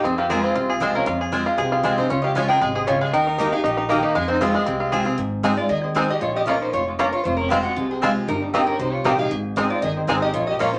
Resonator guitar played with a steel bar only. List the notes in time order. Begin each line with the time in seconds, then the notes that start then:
0.04 G#4
0.18 G4
0.30 A#4
0.44 C5
0.95 A#4
1.58 G#4
1.98 C5
2.09 C#5
2.22 D#5
2.35 F5
2.49 G5
2.61 F5
2.75 G#4
2.88 C#5
3.01 F5
3.14 G5
3.53 F5
3.64 D#5
3.89 A#4
4.02 G4
4.15 F5
4.28 C5
4.42 G#4
4.50 F4
4.59 G#4
5.57 D5
5.69 D#5
5.84 G#4
5.96 C5
6.10 D#5
6.22 C#5
6.36 D#5
6.48 C#5
6.62 C5
6.74 C#5
6.88 F4
7.00 A#4
7.13 C#5
7.24 C5
7.37 A#4
7.49 G4
7.63 F#4
7.76 F4
7.91 G#4
8.29 A#4
8.42 D#4
8.54 G4
8.67 A#4
8.79 C5
8.92 C#5
9.05 D#5
9.19 F5
9.70 D5
9.83 D#5
9.97 G#4
10.08 C5
10.22 D#5
10.34 C#5
10.47 D#5
10.60 C#5
10.73 C5